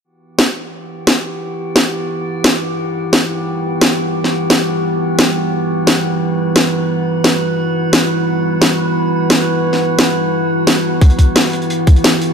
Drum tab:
HH |----------------|----------------|----------------|----------------|
SD |----o-------o---|----o-------o---|----o-------o---|-o--o-------o---|
BD |----------------|----------------|----------------|----------------|

HH |----------------|----------------|----------------|----------------|
SD |----o-------o---|----o-------o---|----o-------o---|-o--o-------o---|
BD |----------------|----------------|----------------|----------------|

HH |xxx-o-xxx-xxx-x-|
SD |----o-------o---|
BD |o-o-------o-----|